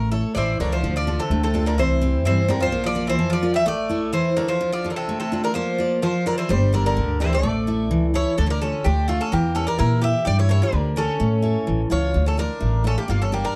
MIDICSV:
0, 0, Header, 1, 5, 480
1, 0, Start_track
1, 0, Key_signature, -1, "minor"
1, 0, Tempo, 471328
1, 855, Time_signature, 2, 2, 24, 8
1, 8533, Key_signature, -1, "minor"
1, 13805, End_track
2, 0, Start_track
2, 0, Title_t, "Bouzouki"
2, 0, Program_c, 0, 25
2, 0, Note_on_c, 0, 70, 89
2, 114, Note_off_c, 0, 70, 0
2, 118, Note_on_c, 0, 69, 76
2, 349, Note_off_c, 0, 69, 0
2, 353, Note_on_c, 0, 74, 85
2, 381, Note_on_c, 0, 72, 80
2, 610, Note_off_c, 0, 72, 0
2, 614, Note_on_c, 0, 70, 70
2, 699, Note_off_c, 0, 74, 0
2, 739, Note_off_c, 0, 70, 0
2, 740, Note_on_c, 0, 72, 73
2, 962, Note_off_c, 0, 72, 0
2, 984, Note_on_c, 0, 74, 83
2, 1219, Note_on_c, 0, 69, 80
2, 1228, Note_off_c, 0, 74, 0
2, 1441, Note_off_c, 0, 69, 0
2, 1466, Note_on_c, 0, 69, 73
2, 1698, Note_off_c, 0, 69, 0
2, 1702, Note_on_c, 0, 70, 77
2, 1811, Note_off_c, 0, 70, 0
2, 1827, Note_on_c, 0, 72, 82
2, 2296, Note_off_c, 0, 72, 0
2, 2308, Note_on_c, 0, 72, 98
2, 2545, Note_on_c, 0, 70, 84
2, 2550, Note_off_c, 0, 72, 0
2, 2665, Note_off_c, 0, 70, 0
2, 2673, Note_on_c, 0, 72, 93
2, 2889, Note_off_c, 0, 72, 0
2, 2917, Note_on_c, 0, 74, 96
2, 3131, Note_off_c, 0, 74, 0
2, 3151, Note_on_c, 0, 72, 96
2, 3368, Note_off_c, 0, 72, 0
2, 3390, Note_on_c, 0, 74, 85
2, 3607, Note_off_c, 0, 74, 0
2, 3624, Note_on_c, 0, 76, 97
2, 3742, Note_off_c, 0, 76, 0
2, 3746, Note_on_c, 0, 74, 95
2, 4188, Note_off_c, 0, 74, 0
2, 4210, Note_on_c, 0, 72, 91
2, 4437, Note_off_c, 0, 72, 0
2, 4446, Note_on_c, 0, 70, 81
2, 4563, Note_off_c, 0, 70, 0
2, 4566, Note_on_c, 0, 72, 81
2, 4795, Note_off_c, 0, 72, 0
2, 4820, Note_on_c, 0, 74, 83
2, 4986, Note_off_c, 0, 74, 0
2, 4995, Note_on_c, 0, 70, 57
2, 5051, Note_off_c, 0, 70, 0
2, 5055, Note_on_c, 0, 69, 76
2, 5280, Note_off_c, 0, 69, 0
2, 5292, Note_on_c, 0, 69, 74
2, 5540, Note_off_c, 0, 69, 0
2, 5544, Note_on_c, 0, 70, 78
2, 5647, Note_off_c, 0, 70, 0
2, 5651, Note_on_c, 0, 72, 84
2, 6099, Note_off_c, 0, 72, 0
2, 6142, Note_on_c, 0, 72, 88
2, 6380, Note_off_c, 0, 72, 0
2, 6384, Note_on_c, 0, 70, 87
2, 6490, Note_off_c, 0, 70, 0
2, 6494, Note_on_c, 0, 72, 78
2, 6606, Note_off_c, 0, 72, 0
2, 6622, Note_on_c, 0, 72, 82
2, 6842, Note_off_c, 0, 72, 0
2, 6867, Note_on_c, 0, 70, 77
2, 6973, Note_off_c, 0, 70, 0
2, 6987, Note_on_c, 0, 70, 85
2, 7316, Note_off_c, 0, 70, 0
2, 7351, Note_on_c, 0, 72, 83
2, 7466, Note_off_c, 0, 72, 0
2, 7480, Note_on_c, 0, 74, 78
2, 8266, Note_off_c, 0, 74, 0
2, 8305, Note_on_c, 0, 73, 90
2, 8522, Note_off_c, 0, 73, 0
2, 8535, Note_on_c, 0, 69, 83
2, 8618, Note_off_c, 0, 69, 0
2, 8626, Note_on_c, 0, 73, 57
2, 8655, Note_off_c, 0, 73, 0
2, 8659, Note_on_c, 0, 70, 79
2, 8768, Note_off_c, 0, 70, 0
2, 8774, Note_on_c, 0, 69, 72
2, 9007, Note_on_c, 0, 67, 83
2, 9020, Note_off_c, 0, 69, 0
2, 9233, Note_off_c, 0, 67, 0
2, 9255, Note_on_c, 0, 65, 81
2, 9377, Note_off_c, 0, 65, 0
2, 9380, Note_on_c, 0, 69, 81
2, 9500, Note_off_c, 0, 69, 0
2, 9504, Note_on_c, 0, 67, 83
2, 9722, Note_off_c, 0, 67, 0
2, 9731, Note_on_c, 0, 69, 86
2, 9851, Note_off_c, 0, 69, 0
2, 9855, Note_on_c, 0, 70, 85
2, 9961, Note_off_c, 0, 70, 0
2, 9973, Note_on_c, 0, 70, 89
2, 10196, Note_off_c, 0, 70, 0
2, 10222, Note_on_c, 0, 76, 94
2, 10456, Note_off_c, 0, 76, 0
2, 10460, Note_on_c, 0, 74, 98
2, 10579, Note_off_c, 0, 74, 0
2, 10586, Note_on_c, 0, 73, 91
2, 10691, Note_off_c, 0, 73, 0
2, 10702, Note_on_c, 0, 73, 94
2, 10809, Note_off_c, 0, 73, 0
2, 10827, Note_on_c, 0, 70, 89
2, 11180, Note_off_c, 0, 70, 0
2, 11184, Note_on_c, 0, 69, 83
2, 12097, Note_off_c, 0, 69, 0
2, 12141, Note_on_c, 0, 73, 89
2, 12472, Note_off_c, 0, 73, 0
2, 12503, Note_on_c, 0, 69, 81
2, 12609, Note_off_c, 0, 69, 0
2, 12618, Note_on_c, 0, 70, 86
2, 13101, Note_off_c, 0, 70, 0
2, 13105, Note_on_c, 0, 69, 82
2, 13216, Note_on_c, 0, 67, 70
2, 13222, Note_off_c, 0, 69, 0
2, 13338, Note_off_c, 0, 67, 0
2, 13347, Note_on_c, 0, 65, 78
2, 13451, Note_off_c, 0, 65, 0
2, 13459, Note_on_c, 0, 69, 81
2, 13568, Note_off_c, 0, 69, 0
2, 13582, Note_on_c, 0, 67, 79
2, 13693, Note_on_c, 0, 70, 82
2, 13701, Note_off_c, 0, 67, 0
2, 13805, Note_off_c, 0, 70, 0
2, 13805, End_track
3, 0, Start_track
3, 0, Title_t, "Steel-string acoustic guitar"
3, 0, Program_c, 1, 25
3, 0, Note_on_c, 1, 57, 65
3, 117, Note_on_c, 1, 64, 46
3, 124, Note_on_c, 1, 69, 38
3, 126, Note_on_c, 1, 73, 53
3, 356, Note_off_c, 1, 57, 0
3, 370, Note_on_c, 1, 52, 54
3, 509, Note_off_c, 1, 64, 0
3, 511, Note_off_c, 1, 69, 0
3, 514, Note_off_c, 1, 73, 0
3, 611, Note_on_c, 1, 64, 49
3, 619, Note_on_c, 1, 73, 49
3, 622, Note_on_c, 1, 69, 35
3, 806, Note_off_c, 1, 64, 0
3, 809, Note_off_c, 1, 69, 0
3, 810, Note_off_c, 1, 73, 0
3, 839, Note_off_c, 1, 52, 0
3, 853, Note_on_c, 1, 50, 66
3, 1090, Note_on_c, 1, 62, 54
3, 1093, Note_on_c, 1, 65, 40
3, 1098, Note_on_c, 1, 69, 54
3, 1321, Note_off_c, 1, 50, 0
3, 1334, Note_on_c, 1, 57, 61
3, 1477, Note_off_c, 1, 65, 0
3, 1478, Note_off_c, 1, 62, 0
3, 1482, Note_off_c, 1, 69, 0
3, 1565, Note_on_c, 1, 62, 48
3, 1574, Note_on_c, 1, 65, 39
3, 1575, Note_on_c, 1, 69, 59
3, 1763, Note_off_c, 1, 62, 0
3, 1765, Note_off_c, 1, 65, 0
3, 1768, Note_off_c, 1, 69, 0
3, 1801, Note_off_c, 1, 57, 0
3, 1823, Note_on_c, 1, 48, 67
3, 2052, Note_on_c, 1, 60, 56
3, 2061, Note_on_c, 1, 64, 39
3, 2063, Note_on_c, 1, 67, 55
3, 2286, Note_off_c, 1, 48, 0
3, 2294, Note_on_c, 1, 55, 68
3, 2439, Note_off_c, 1, 60, 0
3, 2441, Note_off_c, 1, 64, 0
3, 2445, Note_off_c, 1, 67, 0
3, 2530, Note_on_c, 1, 60, 53
3, 2539, Note_on_c, 1, 64, 45
3, 2540, Note_on_c, 1, 67, 57
3, 2726, Note_off_c, 1, 60, 0
3, 2727, Note_off_c, 1, 64, 0
3, 2731, Note_off_c, 1, 67, 0
3, 2761, Note_off_c, 1, 55, 0
3, 2772, Note_on_c, 1, 58, 69
3, 3004, Note_on_c, 1, 65, 53
3, 3012, Note_on_c, 1, 70, 41
3, 3012, Note_on_c, 1, 74, 58
3, 3241, Note_off_c, 1, 58, 0
3, 3246, Note_on_c, 1, 53, 69
3, 3394, Note_off_c, 1, 65, 0
3, 3396, Note_off_c, 1, 70, 0
3, 3399, Note_off_c, 1, 74, 0
3, 3488, Note_on_c, 1, 65, 48
3, 3491, Note_on_c, 1, 70, 52
3, 3496, Note_on_c, 1, 74, 47
3, 3684, Note_off_c, 1, 65, 0
3, 3686, Note_off_c, 1, 70, 0
3, 3687, Note_off_c, 1, 74, 0
3, 3717, Note_off_c, 1, 53, 0
3, 3730, Note_on_c, 1, 57, 65
3, 3965, Note_on_c, 1, 64, 49
3, 3975, Note_on_c, 1, 69, 39
3, 3976, Note_on_c, 1, 73, 52
3, 4199, Note_off_c, 1, 57, 0
3, 4206, Note_on_c, 1, 52, 58
3, 4356, Note_off_c, 1, 64, 0
3, 4356, Note_off_c, 1, 69, 0
3, 4361, Note_off_c, 1, 73, 0
3, 4447, Note_on_c, 1, 64, 49
3, 4452, Note_on_c, 1, 69, 47
3, 4458, Note_on_c, 1, 73, 53
3, 4643, Note_off_c, 1, 64, 0
3, 4646, Note_off_c, 1, 69, 0
3, 4649, Note_off_c, 1, 73, 0
3, 4677, Note_off_c, 1, 52, 0
3, 4691, Note_on_c, 1, 50, 63
3, 4933, Note_on_c, 1, 62, 49
3, 4936, Note_on_c, 1, 65, 45
3, 4946, Note_on_c, 1, 69, 46
3, 5159, Note_off_c, 1, 50, 0
3, 5181, Note_on_c, 1, 57, 57
3, 5318, Note_off_c, 1, 62, 0
3, 5321, Note_off_c, 1, 65, 0
3, 5324, Note_off_c, 1, 69, 0
3, 5416, Note_on_c, 1, 62, 52
3, 5420, Note_on_c, 1, 65, 48
3, 5430, Note_on_c, 1, 69, 56
3, 5608, Note_off_c, 1, 62, 0
3, 5611, Note_off_c, 1, 65, 0
3, 5616, Note_off_c, 1, 69, 0
3, 5644, Note_off_c, 1, 57, 0
3, 5658, Note_on_c, 1, 58, 69
3, 5890, Note_on_c, 1, 65, 53
3, 5902, Note_on_c, 1, 70, 43
3, 5905, Note_on_c, 1, 74, 55
3, 6122, Note_off_c, 1, 58, 0
3, 6138, Note_on_c, 1, 53, 66
3, 6278, Note_off_c, 1, 65, 0
3, 6280, Note_off_c, 1, 70, 0
3, 6285, Note_off_c, 1, 74, 0
3, 6374, Note_on_c, 1, 65, 50
3, 6377, Note_on_c, 1, 70, 43
3, 6384, Note_on_c, 1, 74, 48
3, 6566, Note_off_c, 1, 65, 0
3, 6569, Note_off_c, 1, 70, 0
3, 6571, Note_off_c, 1, 74, 0
3, 6602, Note_off_c, 1, 53, 0
3, 6610, Note_on_c, 1, 55, 73
3, 6850, Note_on_c, 1, 67, 52
3, 6859, Note_on_c, 1, 70, 44
3, 6860, Note_on_c, 1, 74, 58
3, 7077, Note_off_c, 1, 55, 0
3, 7095, Note_on_c, 1, 50, 58
3, 7236, Note_off_c, 1, 67, 0
3, 7238, Note_off_c, 1, 70, 0
3, 7242, Note_off_c, 1, 74, 0
3, 7333, Note_on_c, 1, 67, 52
3, 7337, Note_on_c, 1, 70, 46
3, 7344, Note_on_c, 1, 74, 51
3, 7525, Note_off_c, 1, 67, 0
3, 7529, Note_off_c, 1, 70, 0
3, 7529, Note_off_c, 1, 74, 0
3, 7560, Note_off_c, 1, 50, 0
3, 7569, Note_on_c, 1, 57, 67
3, 7812, Note_on_c, 1, 64, 49
3, 7818, Note_on_c, 1, 69, 38
3, 7822, Note_on_c, 1, 76, 56
3, 8036, Note_off_c, 1, 57, 0
3, 8053, Note_on_c, 1, 52, 66
3, 8198, Note_off_c, 1, 64, 0
3, 8198, Note_off_c, 1, 69, 0
3, 8202, Note_off_c, 1, 76, 0
3, 8288, Note_on_c, 1, 64, 48
3, 8291, Note_on_c, 1, 69, 50
3, 8298, Note_on_c, 1, 73, 49
3, 8482, Note_off_c, 1, 64, 0
3, 8485, Note_off_c, 1, 69, 0
3, 8486, Note_off_c, 1, 73, 0
3, 8518, Note_off_c, 1, 52, 0
3, 8538, Note_on_c, 1, 50, 62
3, 8772, Note_on_c, 1, 62, 48
3, 8778, Note_on_c, 1, 65, 44
3, 8785, Note_on_c, 1, 69, 50
3, 9001, Note_off_c, 1, 50, 0
3, 9021, Note_on_c, 1, 57, 57
3, 9156, Note_off_c, 1, 62, 0
3, 9161, Note_off_c, 1, 65, 0
3, 9162, Note_off_c, 1, 69, 0
3, 9247, Note_on_c, 1, 62, 51
3, 9257, Note_on_c, 1, 65, 40
3, 9259, Note_on_c, 1, 69, 50
3, 9442, Note_off_c, 1, 62, 0
3, 9444, Note_off_c, 1, 65, 0
3, 9449, Note_off_c, 1, 69, 0
3, 9483, Note_off_c, 1, 57, 0
3, 9498, Note_on_c, 1, 52, 64
3, 9729, Note_on_c, 1, 64, 47
3, 9735, Note_on_c, 1, 67, 47
3, 9741, Note_on_c, 1, 70, 47
3, 9953, Note_off_c, 1, 52, 0
3, 9965, Note_on_c, 1, 52, 57
3, 10115, Note_off_c, 1, 64, 0
3, 10118, Note_off_c, 1, 67, 0
3, 10119, Note_off_c, 1, 70, 0
3, 10207, Note_on_c, 1, 64, 48
3, 10211, Note_on_c, 1, 67, 48
3, 10219, Note_on_c, 1, 70, 50
3, 10401, Note_off_c, 1, 64, 0
3, 10405, Note_off_c, 1, 67, 0
3, 10405, Note_off_c, 1, 70, 0
3, 10434, Note_off_c, 1, 52, 0
3, 10448, Note_on_c, 1, 55, 65
3, 10683, Note_on_c, 1, 62, 50
3, 10689, Note_on_c, 1, 67, 43
3, 10693, Note_on_c, 1, 70, 58
3, 10916, Note_off_c, 1, 55, 0
3, 10921, Note_on_c, 1, 50, 61
3, 11071, Note_off_c, 1, 62, 0
3, 11074, Note_off_c, 1, 67, 0
3, 11077, Note_off_c, 1, 70, 0
3, 11162, Note_on_c, 1, 62, 48
3, 11168, Note_on_c, 1, 70, 55
3, 11170, Note_on_c, 1, 67, 45
3, 11358, Note_off_c, 1, 62, 0
3, 11359, Note_off_c, 1, 67, 0
3, 11362, Note_off_c, 1, 70, 0
3, 11392, Note_off_c, 1, 50, 0
3, 11403, Note_on_c, 1, 57, 69
3, 11634, Note_on_c, 1, 64, 50
3, 11642, Note_on_c, 1, 69, 37
3, 11645, Note_on_c, 1, 73, 49
3, 11873, Note_off_c, 1, 57, 0
3, 11884, Note_on_c, 1, 52, 57
3, 12026, Note_off_c, 1, 64, 0
3, 12028, Note_off_c, 1, 69, 0
3, 12032, Note_off_c, 1, 73, 0
3, 12118, Note_on_c, 1, 64, 51
3, 12128, Note_on_c, 1, 69, 37
3, 12128, Note_on_c, 1, 73, 53
3, 12317, Note_off_c, 1, 64, 0
3, 12319, Note_off_c, 1, 69, 0
3, 12322, Note_off_c, 1, 73, 0
3, 12354, Note_off_c, 1, 52, 0
3, 12365, Note_on_c, 1, 50, 63
3, 12602, Note_on_c, 1, 62, 50
3, 12612, Note_on_c, 1, 65, 40
3, 12832, Note_off_c, 1, 50, 0
3, 12837, Note_on_c, 1, 57, 59
3, 12991, Note_off_c, 1, 62, 0
3, 12992, Note_off_c, 1, 65, 0
3, 13076, Note_on_c, 1, 62, 52
3, 13080, Note_on_c, 1, 65, 44
3, 13086, Note_on_c, 1, 69, 56
3, 13274, Note_off_c, 1, 62, 0
3, 13277, Note_off_c, 1, 65, 0
3, 13280, Note_off_c, 1, 69, 0
3, 13310, Note_off_c, 1, 57, 0
3, 13321, Note_on_c, 1, 55, 64
3, 13566, Note_on_c, 1, 62, 51
3, 13571, Note_on_c, 1, 67, 44
3, 13576, Note_on_c, 1, 70, 56
3, 13792, Note_off_c, 1, 55, 0
3, 13805, Note_off_c, 1, 62, 0
3, 13805, Note_off_c, 1, 67, 0
3, 13805, Note_off_c, 1, 70, 0
3, 13805, End_track
4, 0, Start_track
4, 0, Title_t, "Bouzouki"
4, 0, Program_c, 2, 25
4, 375, Note_on_c, 2, 52, 65
4, 598, Note_off_c, 2, 52, 0
4, 611, Note_on_c, 2, 50, 64
4, 725, Note_off_c, 2, 50, 0
4, 736, Note_on_c, 2, 53, 64
4, 959, Note_off_c, 2, 53, 0
4, 976, Note_on_c, 2, 53, 60
4, 1199, Note_off_c, 2, 53, 0
4, 1217, Note_on_c, 2, 48, 68
4, 1440, Note_off_c, 2, 48, 0
4, 1460, Note_on_c, 2, 48, 65
4, 1682, Note_off_c, 2, 48, 0
4, 1692, Note_on_c, 2, 50, 70
4, 1806, Note_off_c, 2, 50, 0
4, 1812, Note_on_c, 2, 52, 75
4, 2261, Note_off_c, 2, 52, 0
4, 2298, Note_on_c, 2, 52, 75
4, 2521, Note_off_c, 2, 52, 0
4, 2530, Note_on_c, 2, 50, 76
4, 2645, Note_off_c, 2, 50, 0
4, 2652, Note_on_c, 2, 53, 76
4, 2878, Note_off_c, 2, 53, 0
4, 2889, Note_on_c, 2, 53, 73
4, 3117, Note_off_c, 2, 53, 0
4, 3129, Note_on_c, 2, 52, 70
4, 3356, Note_off_c, 2, 52, 0
4, 3359, Note_on_c, 2, 53, 79
4, 3591, Note_off_c, 2, 53, 0
4, 3605, Note_on_c, 2, 55, 82
4, 3722, Note_off_c, 2, 55, 0
4, 3725, Note_on_c, 2, 57, 83
4, 4177, Note_off_c, 2, 57, 0
4, 4202, Note_on_c, 2, 52, 74
4, 4432, Note_off_c, 2, 52, 0
4, 4446, Note_on_c, 2, 50, 74
4, 4563, Note_off_c, 2, 50, 0
4, 4573, Note_on_c, 2, 53, 66
4, 4798, Note_off_c, 2, 53, 0
4, 4811, Note_on_c, 2, 53, 71
4, 4981, Note_off_c, 2, 53, 0
4, 4990, Note_on_c, 2, 50, 50
4, 5049, Note_off_c, 2, 50, 0
4, 5054, Note_on_c, 2, 48, 67
4, 5278, Note_off_c, 2, 48, 0
4, 5298, Note_on_c, 2, 48, 72
4, 5520, Note_off_c, 2, 48, 0
4, 5536, Note_on_c, 2, 50, 65
4, 5640, Note_on_c, 2, 53, 74
4, 5648, Note_off_c, 2, 50, 0
4, 6093, Note_off_c, 2, 53, 0
4, 6134, Note_on_c, 2, 53, 71
4, 6358, Note_off_c, 2, 53, 0
4, 6379, Note_on_c, 2, 50, 70
4, 6489, Note_off_c, 2, 50, 0
4, 6504, Note_on_c, 2, 52, 74
4, 6612, Note_off_c, 2, 52, 0
4, 6622, Note_on_c, 2, 55, 73
4, 6842, Note_off_c, 2, 55, 0
4, 6860, Note_on_c, 2, 50, 72
4, 6969, Note_off_c, 2, 50, 0
4, 6990, Note_on_c, 2, 50, 71
4, 7317, Note_off_c, 2, 50, 0
4, 7343, Note_on_c, 2, 52, 74
4, 7450, Note_off_c, 2, 52, 0
4, 7463, Note_on_c, 2, 57, 70
4, 8257, Note_off_c, 2, 57, 0
4, 8303, Note_on_c, 2, 64, 80
4, 8522, Note_off_c, 2, 64, 0
4, 8531, Note_on_c, 2, 62, 72
4, 8615, Note_off_c, 2, 62, 0
4, 8619, Note_on_c, 2, 64, 47
4, 8649, Note_off_c, 2, 64, 0
4, 8661, Note_on_c, 2, 62, 60
4, 8769, Note_off_c, 2, 62, 0
4, 8785, Note_on_c, 2, 61, 69
4, 9002, Note_off_c, 2, 61, 0
4, 9012, Note_on_c, 2, 62, 67
4, 9236, Note_off_c, 2, 62, 0
4, 9244, Note_on_c, 2, 57, 68
4, 9360, Note_off_c, 2, 57, 0
4, 9376, Note_on_c, 2, 61, 71
4, 9486, Note_off_c, 2, 61, 0
4, 9490, Note_on_c, 2, 58, 77
4, 9714, Note_off_c, 2, 58, 0
4, 9723, Note_on_c, 2, 61, 75
4, 9839, Note_off_c, 2, 61, 0
4, 9845, Note_on_c, 2, 62, 75
4, 9960, Note_off_c, 2, 62, 0
4, 9968, Note_on_c, 2, 64, 72
4, 10193, Note_off_c, 2, 64, 0
4, 10200, Note_on_c, 2, 67, 78
4, 10426, Note_off_c, 2, 67, 0
4, 10438, Note_on_c, 2, 67, 82
4, 10556, Note_off_c, 2, 67, 0
4, 10579, Note_on_c, 2, 64, 64
4, 10670, Note_off_c, 2, 64, 0
4, 10682, Note_on_c, 2, 64, 78
4, 10799, Note_off_c, 2, 64, 0
4, 10815, Note_on_c, 2, 62, 75
4, 11148, Note_off_c, 2, 62, 0
4, 11172, Note_on_c, 2, 61, 77
4, 12091, Note_off_c, 2, 61, 0
4, 12134, Note_on_c, 2, 65, 80
4, 12468, Note_off_c, 2, 65, 0
4, 12489, Note_on_c, 2, 61, 62
4, 12602, Note_off_c, 2, 61, 0
4, 12623, Note_on_c, 2, 62, 74
4, 13064, Note_off_c, 2, 62, 0
4, 13106, Note_on_c, 2, 61, 74
4, 13211, Note_off_c, 2, 61, 0
4, 13216, Note_on_c, 2, 58, 65
4, 13326, Note_off_c, 2, 58, 0
4, 13336, Note_on_c, 2, 58, 72
4, 13446, Note_off_c, 2, 58, 0
4, 13465, Note_on_c, 2, 61, 62
4, 13571, Note_off_c, 2, 61, 0
4, 13580, Note_on_c, 2, 58, 65
4, 13688, Note_off_c, 2, 58, 0
4, 13695, Note_on_c, 2, 62, 70
4, 13805, Note_off_c, 2, 62, 0
4, 13805, End_track
5, 0, Start_track
5, 0, Title_t, "Upright bass"
5, 0, Program_c, 3, 32
5, 0, Note_on_c, 3, 33, 87
5, 225, Note_off_c, 3, 33, 0
5, 369, Note_on_c, 3, 33, 75
5, 588, Note_off_c, 3, 33, 0
5, 610, Note_on_c, 3, 37, 70
5, 829, Note_off_c, 3, 37, 0
5, 848, Note_on_c, 3, 38, 86
5, 1187, Note_off_c, 3, 38, 0
5, 1325, Note_on_c, 3, 38, 87
5, 1811, Note_off_c, 3, 38, 0
5, 1811, Note_on_c, 3, 36, 83
5, 2294, Note_off_c, 3, 36, 0
5, 2294, Note_on_c, 3, 43, 93
5, 2773, Note_off_c, 3, 43, 0
5, 2773, Note_on_c, 3, 34, 86
5, 3255, Note_off_c, 3, 34, 0
5, 3255, Note_on_c, 3, 41, 80
5, 3737, Note_off_c, 3, 41, 0
5, 3737, Note_on_c, 3, 33, 88
5, 4219, Note_off_c, 3, 33, 0
5, 4219, Note_on_c, 3, 40, 85
5, 4695, Note_off_c, 3, 40, 0
5, 4695, Note_on_c, 3, 38, 87
5, 5179, Note_off_c, 3, 38, 0
5, 5179, Note_on_c, 3, 33, 78
5, 5660, Note_off_c, 3, 33, 0
5, 5660, Note_on_c, 3, 34, 90
5, 6142, Note_off_c, 3, 34, 0
5, 6142, Note_on_c, 3, 41, 87
5, 6621, Note_on_c, 3, 31, 92
5, 6636, Note_off_c, 3, 41, 0
5, 7104, Note_on_c, 3, 38, 84
5, 7119, Note_off_c, 3, 31, 0
5, 7581, Note_off_c, 3, 38, 0
5, 7581, Note_on_c, 3, 33, 96
5, 8058, Note_off_c, 3, 33, 0
5, 8058, Note_on_c, 3, 37, 86
5, 8392, Note_off_c, 3, 37, 0
5, 8539, Note_on_c, 3, 38, 82
5, 8873, Note_off_c, 3, 38, 0
5, 9018, Note_on_c, 3, 38, 87
5, 9352, Note_off_c, 3, 38, 0
5, 9500, Note_on_c, 3, 40, 86
5, 9833, Note_off_c, 3, 40, 0
5, 9980, Note_on_c, 3, 46, 94
5, 10313, Note_off_c, 3, 46, 0
5, 10457, Note_on_c, 3, 43, 94
5, 10791, Note_off_c, 3, 43, 0
5, 10927, Note_on_c, 3, 38, 99
5, 11265, Note_off_c, 3, 38, 0
5, 11412, Note_on_c, 3, 45, 85
5, 11748, Note_off_c, 3, 45, 0
5, 11899, Note_on_c, 3, 33, 74
5, 12112, Note_off_c, 3, 33, 0
5, 12136, Note_on_c, 3, 37, 73
5, 12350, Note_off_c, 3, 37, 0
5, 12378, Note_on_c, 3, 38, 89
5, 12712, Note_off_c, 3, 38, 0
5, 12852, Note_on_c, 3, 33, 88
5, 13188, Note_off_c, 3, 33, 0
5, 13331, Note_on_c, 3, 31, 85
5, 13668, Note_off_c, 3, 31, 0
5, 13805, End_track
0, 0, End_of_file